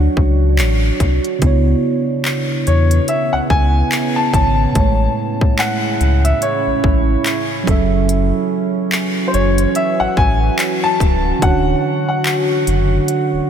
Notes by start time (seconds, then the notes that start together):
Already playing: F#3 D4 F#4 C#5
0.17 C#2, kick
0.59 A1, clap, closed hi-hat
1.00 C2, kick, closed hi-hat
1.24 closed hi-hat
1.39 C#2 C#3 B3, kick, closed hi-hat
1.43 C#3 E4 C#5
2.25 clap
2.67 E2 C#5, closed hi-hat
2.91 closed hi-hat
3.08 E5, closed hi-hat
3.33 C#2 F#5
3.50 C#2 G#5, kick
3.92 clap, closed hi-hat
4.16 A5
4.32 G#1 C#3 B3 E4 C#5 A5, kick, closed hi-hat
4.72 A1 A2 A3, kick, closed hi-hat
4.76 C#3 G#3 C#4 E4 C#5
5.41 kick
5.59 F#5, clap
6.00 C#2, closed hi-hat
6.25 E5, closed hi-hat
6.42 C#5, closed hi-hat
6.66 A1
6.84 A1, kick
7.26 clap, closed hi-hat
7.63 E3 F#3 C#4 F#4
7.67 F#1 A4 E5, kick, closed hi-hat
8.09 closed hi-hat
8.92 clap
9.28 C5
9.34 F#1 C#5, closed hi-hat
9.58 closed hi-hat
9.75 E5, closed hi-hat
10.00 A1 F#5
10.17 A1 G#5, kick
10.59 clap, closed hi-hat
10.84 A5
11.00 C#1, kick, closed hi-hat
11.38 D1 D3 D4 C#5, kick, closed hi-hat
11.43 F#4 C#5 F#5
12.08 F#5
12.25 clap
12.67 F#1, closed hi-hat
13.08 closed hi-hat
13.33 D1